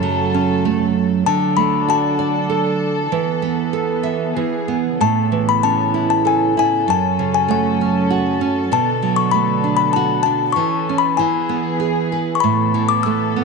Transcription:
Already playing: nylon-string guitar F#2 C#3, string section F#3 A3 A4
0.03 nylon-string guitar F#3
0.34 nylon-string guitar C#4
0.65 nylon-string guitar A3
1.26 nylon-string guitar D3, string section D4 A4, music box A5
1.57 nylon-string guitar A3, music box B5
1.88 nylon-string guitar F#4, music box A5
2.19 nylon-string guitar D5
2.50 nylon-string guitar A4
3.11 string section E3 B3, nylon-string guitar E3
3.42 nylon-string guitar B3
3.73 nylon-string guitar A4
4.03 nylon-string guitar E5
4.35 nylon-string guitar E3, string section G#4
4.68 nylon-string guitar B3
4.99 nylon-string guitar A2, string section C#3 B3 A4, music box A5
5.32 nylon-string guitar E3
5.49 music box B5
5.63 nylon-string guitar C#4, music box A5
5.94 nylon-string guitar E4
6.10 music box A5
6.25 nylon-string guitar A4, music box G#5
6.57 nylon-string guitar E4, music box G#5
6.87 nylon-string guitar F#2, string section F#3 C#4, music box A5
7.19 nylon-string guitar C#3
7.34 music box G#5
7.48 nylon-string guitar A3, music box F#5
7.81 nylon-string guitar C#4
8.10 nylon-string guitar F#4
8.41 nylon-string guitar C#4
8.72 nylon-string guitar B2, string section D3 B3, music box A5
9.02 nylon-string guitar F#3
9.16 music box C#6
9.31 nylon-string guitar A3, music box B5
9.64 nylon-string guitar D4
9.77 music box B5
9.93 nylon-string guitar F#4, music box A5
10.23 nylon-string guitar D4, music box A5
10.52 string section E3 C#4, nylon-string guitar E3, music box C#6
10.89 nylon-string guitar C#4
10.98 music box B5
11.17 nylon-string guitar E3, string section B3 G#4, music box G#5
11.49 nylon-string guitar B3
11.80 nylon-string guitar G#4
12.12 nylon-string guitar B4
12.35 music box C#6
12.40 nylon-string guitar A2, string section B3 A4, music box B5
12.74 nylon-string guitar E3
12.89 music box D6
13.03 nylon-string guitar A3, music box E6
13.36 nylon-string guitar B3

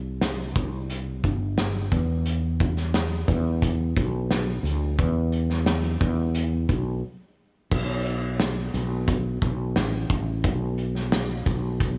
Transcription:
Already playing: fretless electric bass C2
0.21 snare, closed hi-hat
0.56 fretless electric bass C2, kick, closed hi-hat
0.90 closed hi-hat
1.24 fretless electric bass G1, kick, closed hi-hat
1.58 snare, closed hi-hat
1.92 fretless electric bass E2, kick, closed hi-hat
2.26 closed hi-hat
2.60 kick, closed hi-hat
2.77 snare, closed hi-hat
2.94 snare, closed hi-hat
3.28 fretless electric bass E2, kick, closed hi-hat
3.62 kick, closed hi-hat
3.97 fretless electric bass B1, kick, closed hi-hat
4.31 snare, closed hi-hat
4.63 fretless electric bass D2, closed hi-hat
4.99 fretless electric bass E2, kick, closed hi-hat
5.32 closed hi-hat
5.50 snare
5.66 snare, closed hi-hat
5.84 closed hi-hat
6.01 fretless electric bass E2, kick, closed hi-hat
6.35 closed hi-hat
6.69 fretless electric bass B1, kick, closed hi-hat
7.71 fretless electric bass B1, kick, crash
8.05 closed hi-hat
8.40 snare, closed hi-hat
8.74 fretless electric bass B1, closed hi-hat
9.08 kick, closed hi-hat
9.42 fretless electric bass B1, kick, closed hi-hat
9.76 fretless electric bass A1, snare, closed hi-hat
10.10 fretless electric bass A1, kick, closed hi-hat
10.44 fretless electric bass B1, kick, closed hi-hat
10.78 closed hi-hat
10.95 snare
11.12 snare, closed hi-hat
11.46 fretless electric bass B1, kick, closed hi-hat
11.80 kick, closed hi-hat

